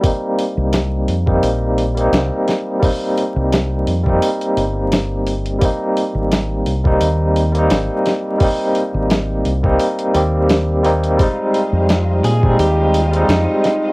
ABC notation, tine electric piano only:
X:1
M:4/4
L:1/16
Q:"Swing 16ths" 1/4=86
K:Cm
V:1 name="Tine electric piano"
[G,B,CE]6- [G,B,CE] [G,B,CE]4 [G,B,CE]4- [G,B,CE] | [G,B,CE]6- [G,B,CE] [G,B,CE]8- [G,B,CE] | [G,B,CE]6- [G,B,CE] [G,B,CE]4 [G,B,CE]4- [G,B,CE] | [G,B,CE]6- [G,B,CE] [G,B,CE]3 [G,B,CG]4 [G,B,CE]2 |
[G,A,CE]6- [G,A,CE] [G,A,CE]4 [G,A,CE]4- [G,A,CE] |]